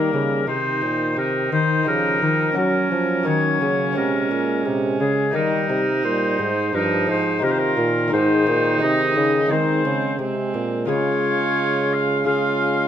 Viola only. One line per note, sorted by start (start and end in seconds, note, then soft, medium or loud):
0.00 0.49 A#3 medium
0.48 1.15 D#4 medium
1.16 2.53 D#4 medium
2.56 5.30 C#4 medium
5.34 6.71 D#4 medium
6.74 7.42 D#4 medium
7.44 8.15 F4 medium
8.14 9.52 D#4 medium
9.51 10.20 C4 medium
10.21 10.88 C4 medium
10.89 12.23 F4 medium
12.28 12.88 F4 medium